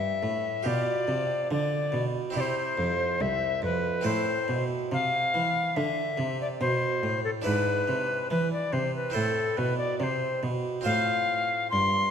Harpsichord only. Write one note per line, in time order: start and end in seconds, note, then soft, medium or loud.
0.00 0.19 G2 soft
0.00 0.60 C4 soft
0.00 0.60 G4 soft
0.23 0.61 A2 soft
0.63 1.04 B2 soft
0.63 2.30 F4 soft
0.63 2.31 G4 soft
1.07 1.46 C3 soft
1.51 1.89 D3 soft
1.92 2.31 B2 soft
2.30 3.99 C4 soft
2.30 4.00 E4 soft
2.30 4.01 G4 soft
2.35 2.74 C3 soft
2.78 3.16 F2 soft
3.21 3.59 C2 medium
3.62 4.01 F2 soft
4.01 7.40 C4 soft
4.01 7.41 E4 soft
4.01 7.41 A4 soft
4.05 4.45 A2 soft
4.48 4.88 B2 soft
4.92 5.30 C3 soft
5.34 5.73 E3 soft
5.77 6.15 D3 soft
6.18 6.57 C3 medium
6.61 6.99 B2 medium
7.03 7.42 A2 soft
7.42 7.84 G#2 soft
7.42 9.09 D4 soft
7.42 9.10 E4 soft
7.42 9.10 B4 soft
7.88 8.26 C3 soft
8.30 8.69 E3 medium
8.73 9.11 C3 soft
9.10 10.79 C4 soft
9.10 10.80 E4 soft
9.10 10.80 C5 soft
9.15 9.53 A2 soft
9.57 9.96 B2 medium
10.00 10.39 C3 medium
10.43 10.81 B2 medium
10.81 12.11 C4 soft
10.81 12.11 F4 soft
10.81 12.11 C5 soft
10.86 11.68 A2 soft
11.73 12.11 G2 medium